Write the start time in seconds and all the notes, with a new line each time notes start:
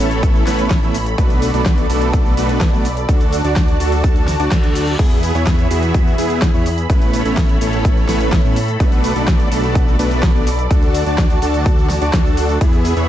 Already playing: A4 C#5 B5
0.00 A1 A3 B3 C#4 E4 A4
0.11 closed hi-hat, shaker
0.23 kick, closed hi-hat, shaker
0.36 shaker
0.47 A1 A3 B3 C#4 E4 B4, snare, open hi-hat, shaker
0.59 closed hi-hat, shaker
0.71 kick, snare, closed hi-hat, shaker
0.83 A1 A3 B3 C#4 E4 E5, shaker
0.94 open hi-hat, shaker
1.06 closed hi-hat, shaker
1.18 B1 A3 B3 D4 F#4 A4 B4 D5, kick, closed hi-hat, shaker
1.30 closed hi-hat, shaker
1.42 open hi-hat, shaker
1.54 B1 A3 B3 D4 F#4 D5, closed hi-hat, shaker
1.66 kick, snare, closed hi-hat, shaker
1.78 closed hi-hat, shaker
1.90 B1 A3 B3 D4 F#4 A4, open hi-hat, shaker
2.02 closed hi-hat, shaker
2.13 kick, closed hi-hat, shaker
2.26 shaker
2.37 B1 A3 B3 D4 F#4 B4, open hi-hat, shaker
2.49 closed hi-hat, shaker
2.61 kick, snare, closed hi-hat, shaker
2.73 B1 A3 B3 D4 F#4 D5, shaker
2.85 open hi-hat, shaker
2.97 closed hi-hat, shaker
3.09 D2 D4 F#4 A4 A5, kick, closed hi-hat, shaker
3.21 closed hi-hat, shaker
3.33 open hi-hat, shaker
3.44 D2 D4 F#4 D5, closed hi-hat, shaker
3.56 kick, snare, closed hi-hat, shaker
3.68 closed hi-hat, shaker
3.80 D2 D4 F#4 A4, open hi-hat, shaker
3.92 closed hi-hat, shaker
4.04 kick, closed hi-hat, reverse cymbal, shaker
4.16 closed hi-hat, shaker
4.28 snare, open hi-hat, shaker
4.40 D2 D4 F#4 D5, closed hi-hat, shaker
4.51 D2 D4 A4, kick, snare, closed hi-hat, shaker
4.64 closed hi-hat, shaker
4.75 open hi-hat, shaker
4.87 closed hi-hat, shaker
4.99 E2 B3 E4 G#4 E5 B5, kick, closed hi-hat, crash, shaker
5.11 closed hi-hat, shaker
5.23 open hi-hat, shaker
5.35 E2 B3 E4 C#5, closed hi-hat, shaker
5.47 kick, snare, closed hi-hat, shaker
5.59 closed hi-hat, shaker
5.71 E2 B3 E4 F#4, open hi-hat, shaker
5.83 closed hi-hat, shaker
5.94 kick, closed hi-hat, shaker
6.07 shaker
6.18 E2 B3 E4 G#4, open hi-hat, shaker
6.30 closed hi-hat, shaker
6.42 kick, snare, closed hi-hat, shaker
6.54 E2 B3 E4 C#5, shaker
6.66 open hi-hat, shaker
6.78 closed hi-hat, shaker
6.90 A1 A3 B3 C#4 E4 A4 B4 C#5, kick, closed hi-hat, shaker
7.02 closed hi-hat, shaker
7.13 open hi-hat, shaker
7.25 A1 A3 B3 C#4 E4 E5, closed hi-hat, shaker
7.37 kick, snare, closed hi-hat, shaker
7.49 closed hi-hat, shaker
7.61 A1 A3 B3 C#4 E4 A4, open hi-hat, shaker
7.73 closed hi-hat, shaker
7.85 kick, closed hi-hat, shaker
7.97 shaker
8.09 A1 A3 B3 C#4 E4 B4, snare, open hi-hat, shaker
8.21 closed hi-hat, shaker
8.32 kick, snare, closed hi-hat, shaker
8.44 A2 A3 B3 C#4 E4 E5, shaker
8.56 open hi-hat, shaker
8.68 closed hi-hat, shaker
8.80 B1 A3 B3 D4 F#4 B4 D5, kick, closed hi-hat, shaker
8.92 closed hi-hat, shaker
9.04 open hi-hat, shaker
9.16 B1 A3 B3 D4 F#4 D5, closed hi-hat, shaker
9.28 kick, snare, closed hi-hat, shaker
9.40 closed hi-hat, shaker
9.52 B1 A3 B3 D4 F#4 A4, open hi-hat, shaker
9.64 closed hi-hat, shaker
9.75 kick, closed hi-hat, shaker
9.88 shaker
9.99 B1 A3 B3 D4 F#4 B4, open hi-hat, shaker
10.11 closed hi-hat, shaker
10.23 kick, snare, closed hi-hat, shaker
10.35 B1 A3 B3 D4 F#4 D5, shaker
10.47 open hi-hat, shaker
10.59 closed hi-hat, shaker
10.71 D2 D4 F#4 A4 A5, kick, closed hi-hat, shaker
10.83 closed hi-hat, shaker
10.94 open hi-hat, shaker
11.06 D2 D4 F#4 D5, closed hi-hat, shaker
11.18 kick, snare, closed hi-hat, shaker
11.30 closed hi-hat, shaker
11.42 D2 D4 F#4 A4, open hi-hat, shaker
11.54 closed hi-hat, shaker
11.66 kick, closed hi-hat, shaker
11.78 shaker
11.90 snare, open hi-hat, shaker
12.02 D2 D4 F#4 D5, closed hi-hat, shaker
12.13 D2 D4 F#4 A4, kick, snare, closed hi-hat, shaker
12.26 shaker
12.37 open hi-hat, shaker
12.49 closed hi-hat, shaker
12.61 E2 B3 E4 G#4 E5 B5, kick, closed hi-hat, ride, shaker
12.73 closed hi-hat, shaker
12.85 open hi-hat, shaker
12.97 E2 B3 E4 C#5, closed hi-hat, shaker